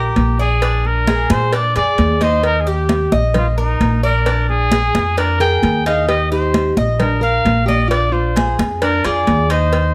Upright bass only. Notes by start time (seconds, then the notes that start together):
Already playing: A#1
0.16 A#1
1.30 A#2
1.76 F2
1.98 D#2
3.12 A#1
3.80 A#1
4.94 F2
5.62 D#2
6.77 A#1
7.45 A#1
8.59 F2
9.05 F2
9.28 D#2